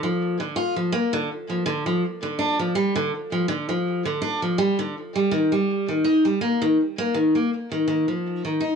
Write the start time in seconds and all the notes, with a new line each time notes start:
0.03 F3
0.40 D3
0.56 F4
0.76 F3
0.92 A#3
1.13 D3
1.50 F3
1.66 D3
1.86 F3
2.23 D3
2.39 D4
2.59 F3
2.75 G3
2.96 D3
3.32 F3
3.48 D3
3.69 F3
4.05 D3
4.22 D4
4.42 F3
4.58 G3
4.79 D3
5.16 G3
5.31 D#3
5.52 G3
5.88 D#3
6.04 D#4
6.25 G3
6.41 A#3
6.62 D#3
6.98 A#3
7.14 D#3
7.35 A#3
7.71 D#3
7.87 D#3
8.08 F3
8.45 D#3
8.60 D#4